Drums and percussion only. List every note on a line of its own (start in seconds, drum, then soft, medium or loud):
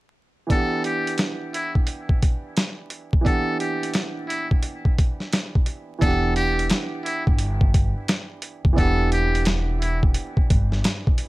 0.50 kick loud
0.50 closed hi-hat medium
0.84 closed hi-hat medium
1.07 closed hi-hat medium
1.18 snare loud
1.18 closed hi-hat medium
1.54 closed hi-hat medium
1.75 kick medium
1.87 closed hi-hat medium
2.09 kick medium
2.22 kick loud
2.22 closed hi-hat medium
2.57 snare loud
2.57 closed hi-hat loud
2.90 closed hi-hat medium
3.13 kick medium
3.26 kick loud
3.26 closed hi-hat medium
3.60 closed hi-hat medium
3.83 closed hi-hat medium
3.94 snare loud
3.94 closed hi-hat medium
4.30 closed hi-hat medium
4.51 kick medium
4.63 closed hi-hat medium
4.85 kick medium
4.98 kick loud
4.98 closed hi-hat medium
5.20 snare soft
5.33 snare loud
5.33 closed hi-hat loud
5.55 kick medium
5.66 closed hi-hat medium
6.02 kick loud
6.02 closed hi-hat medium
6.36 closed hi-hat medium
6.59 closed hi-hat medium
6.70 finger snap medium
6.70 snare loud
6.70 closed hi-hat loud
7.06 closed hi-hat medium
7.27 kick loud
7.39 closed hi-hat medium
7.61 kick medium
7.74 kick loud
7.74 closed hi-hat medium
8.08 finger snap medium
8.08 snare loud
8.08 closed hi-hat loud
8.42 closed hi-hat medium
8.65 kick loud
8.78 kick loud
8.78 closed hi-hat medium
9.12 closed hi-hat medium
9.35 closed hi-hat medium
9.45 finger snap medium
9.45 snare loud
9.45 closed hi-hat loud
9.82 closed hi-hat medium
10.03 kick medium
10.14 closed hi-hat medium
10.37 kick medium
10.50 kick loud
10.50 closed hi-hat medium
10.72 snare soft
10.84 finger snap medium
10.84 snare loud
10.84 closed hi-hat loud
11.07 kick loud
11.18 closed hi-hat medium